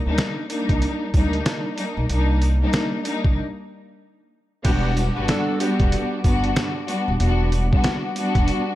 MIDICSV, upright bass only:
0, 0, Header, 1, 2, 480
1, 0, Start_track
1, 0, Tempo, 638298
1, 1577, Time_signature, 4, 2, 24, 8
1, 6580, End_track
2, 0, Start_track
2, 0, Title_t, "Upright bass"
2, 0, Program_c, 0, 32
2, 43, Note_on_c, 0, 38, 85
2, 121, Note_off_c, 0, 38, 0
2, 521, Note_on_c, 0, 36, 96
2, 599, Note_off_c, 0, 36, 0
2, 857, Note_on_c, 0, 38, 101
2, 1055, Note_off_c, 0, 38, 0
2, 1482, Note_on_c, 0, 35, 93
2, 1560, Note_off_c, 0, 35, 0
2, 1577, Note_on_c, 0, 36, 104
2, 1972, Note_off_c, 0, 36, 0
2, 2440, Note_on_c, 0, 36, 86
2, 2519, Note_off_c, 0, 36, 0
2, 3496, Note_on_c, 0, 28, 111
2, 3814, Note_off_c, 0, 28, 0
2, 3883, Note_on_c, 0, 31, 96
2, 3961, Note_off_c, 0, 31, 0
2, 4360, Note_on_c, 0, 28, 84
2, 4439, Note_off_c, 0, 28, 0
2, 4696, Note_on_c, 0, 31, 81
2, 4894, Note_off_c, 0, 31, 0
2, 5323, Note_on_c, 0, 27, 93
2, 5401, Note_off_c, 0, 27, 0
2, 5417, Note_on_c, 0, 28, 112
2, 5813, Note_off_c, 0, 28, 0
2, 6281, Note_on_c, 0, 28, 95
2, 6359, Note_off_c, 0, 28, 0
2, 6580, End_track
0, 0, End_of_file